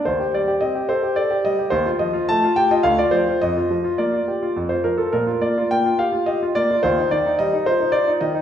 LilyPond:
\new Staff \with { instrumentName = "Grand piano" } { \time 3/4 \key bes \major \tempo 4 = 107 << { c''8 d''8 ees''8 c''8 d''8 ees''8 | c''8 ees''8 a''8 g''16 ees''16 f''16 d''16 c''8 | ees''4 d''4 r16 c''16 bes'16 a'16 | bes'8 d''8 g''8 f''8 ees''8 d''8 |
c''8 d''8 ees''8 c''8 d''8 ees''8 | } \\ { ees,16 g'16 g16 g'16 c'16 g'16 a'16 g'16 a'16 g'16 g16 g'16 | ees,16 f'16 f16 f'16 a16 f'16 g'16 f'16 d,16 f'16 f16 f'16 | f,16 f'16 f16 f'16 bes16 f'16 g'16 f'16 f,16 f'16 f16 f'16 | bes,16 f'16 bes16 f'16 bes16 f'16 g'16 f'16 g'16 f'16 bes16 f'16 |
ees,16 ees'16 ees16 ees'16 g16 ees'16 f'16 ees'16 f'16 ees'16 ees16 ees'16 | } >> }